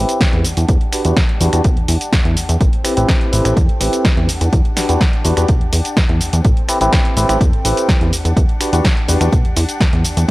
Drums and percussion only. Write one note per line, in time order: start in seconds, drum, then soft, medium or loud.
0.09 closed hi-hat medium
0.09 cabasa soft
0.21 kick loud
0.21 snare loud
0.21 closed hi-hat medium
0.21 cabasa soft
0.33 closed hi-hat soft
0.45 open hi-hat medium
0.45 cabasa medium
0.57 closed hi-hat medium
0.57 cabasa soft
0.69 kick loud
0.69 closed hi-hat medium
0.69 cabasa soft
0.81 closed hi-hat soft
0.93 finger snap medium
0.93 open hi-hat loud
0.93 cabasa medium
1.05 closed hi-hat medium
1.05 cabasa soft
1.17 kick loud
1.17 snare loud
1.17 closed hi-hat medium
1.17 cabasa soft
1.29 closed hi-hat soft
1.41 open hi-hat medium
1.41 cabasa medium
1.53 finger snap medium
1.53 closed hi-hat medium
1.53 cabasa soft
1.64 kick loud
1.64 closed hi-hat medium
1.64 cabasa soft
1.77 closed hi-hat soft
1.88 open hi-hat loud
1.88 cabasa medium
2.01 closed hi-hat soft
2.01 cabasa soft
2.13 kick loud
2.13 snare loud
2.13 closed hi-hat soft
2.13 cabasa soft
2.25 closed hi-hat soft
2.37 open hi-hat medium
2.37 cabasa medium
2.49 closed hi-hat soft
2.49 cabasa soft
2.61 kick loud
2.61 closed hi-hat medium
2.61 cabasa soft
2.73 closed hi-hat soft
2.85 finger snap medium
2.85 open hi-hat loud
2.85 cabasa medium
2.97 closed hi-hat soft
2.97 cabasa soft
3.09 kick loud
3.09 snare loud
3.09 closed hi-hat soft
3.09 cabasa soft
3.21 closed hi-hat soft
3.33 open hi-hat medium
3.33 cabasa medium
3.45 finger snap medium
3.45 closed hi-hat soft
3.45 cabasa soft
3.57 kick loud
3.57 closed hi-hat soft
3.57 cabasa soft
3.69 closed hi-hat soft
3.81 open hi-hat loud
3.81 cabasa medium
3.93 closed hi-hat soft
3.93 cabasa soft
4.05 kick loud
4.05 snare loud
4.05 closed hi-hat soft
4.05 cabasa soft
4.17 closed hi-hat soft
4.29 open hi-hat medium
4.29 cabasa medium
4.41 closed hi-hat soft
4.41 cabasa soft
4.53 kick loud
4.53 closed hi-hat soft
4.53 cabasa soft
4.65 closed hi-hat soft
4.77 finger snap medium
4.77 snare medium
4.77 open hi-hat loud
4.77 cabasa medium
4.89 closed hi-hat soft
4.89 cabasa soft
5.01 kick loud
5.01 snare loud
5.01 closed hi-hat soft
5.01 cabasa soft
5.13 closed hi-hat soft
5.25 open hi-hat medium
5.25 cabasa medium
5.37 finger snap medium
5.37 closed hi-hat soft
5.37 cabasa soft
5.48 kick loud
5.48 closed hi-hat soft
5.48 cabasa soft
5.61 closed hi-hat soft
5.73 open hi-hat loud
5.73 cabasa medium
5.85 closed hi-hat soft
5.85 cabasa soft
5.97 kick loud
5.97 snare loud
5.97 closed hi-hat soft
5.97 cabasa soft
6.09 closed hi-hat soft
6.21 open hi-hat medium
6.21 cabasa medium
6.33 closed hi-hat soft
6.33 cabasa soft
6.45 kick loud
6.45 closed hi-hat soft
6.45 cabasa soft
6.57 closed hi-hat soft
6.69 finger snap medium
6.69 open hi-hat loud
6.69 cabasa medium
6.81 closed hi-hat soft
6.81 cabasa soft
6.93 kick loud
6.93 snare loud
6.93 closed hi-hat soft
6.93 cabasa soft
7.05 closed hi-hat soft
7.17 open hi-hat medium
7.17 cabasa medium
7.29 finger snap medium
7.29 closed hi-hat soft
7.29 cabasa soft
7.41 kick loud
7.41 closed hi-hat soft
7.41 cabasa soft
7.53 closed hi-hat soft
7.65 open hi-hat loud
7.65 cabasa medium
7.77 closed hi-hat soft
7.77 cabasa soft
7.89 kick loud
7.89 snare loud
7.89 closed hi-hat soft
7.89 cabasa soft
8.01 closed hi-hat soft
8.13 open hi-hat medium
8.13 cabasa medium
8.25 closed hi-hat soft
8.25 cabasa soft
8.37 kick loud
8.37 closed hi-hat medium
8.37 cabasa soft
8.49 closed hi-hat soft
8.61 finger snap medium
8.61 open hi-hat loud
8.61 cabasa medium
8.73 closed hi-hat soft
8.73 cabasa soft
8.85 kick loud
8.85 snare loud
8.85 closed hi-hat medium
8.85 cabasa soft
8.97 closed hi-hat soft
9.09 open hi-hat medium
9.09 cabasa medium
9.21 finger snap medium
9.21 closed hi-hat soft
9.21 cabasa soft
9.32 kick loud
9.32 closed hi-hat soft
9.32 cabasa soft
9.45 closed hi-hat soft
9.57 open hi-hat loud
9.57 cabasa medium
9.69 closed hi-hat soft
9.69 cabasa soft
9.80 kick loud
9.80 snare loud
9.80 closed hi-hat soft
9.80 cabasa soft
9.93 closed hi-hat soft
10.05 open hi-hat medium
10.05 cabasa medium
10.17 closed hi-hat soft
10.17 cabasa soft